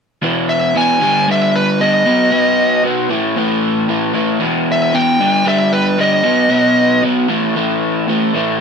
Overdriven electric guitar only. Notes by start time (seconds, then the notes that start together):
0.22 E2 B2 E3
0.75 E2 B2 E3
1.01 G2 D3 G3
1.28 G2 D3 G3
1.80 G2 D3 G3
2.05 B2 F#3 B3
2.31 B2 F#3 B3
2.84 B2 F#3 B3
3.09 A2 E3 A3
3.36 A2 E3 A3
3.88 A2 E3 A3
4.13 A2 E3 A3
4.39 E2 B2 E3
4.94 E2 B2 E3
5.20 G2 D3 G3
5.45 G2 D3 G3
5.98 G2 D3 G3
6.24 B2 F#3 B3
6.50 B2 F#3 B3
7.04 B2 F#3 B3
7.29 A2 E3 A3
7.55 A2 E3 A3
8.07 A2 E3 A3
8.34 A2 E3 A3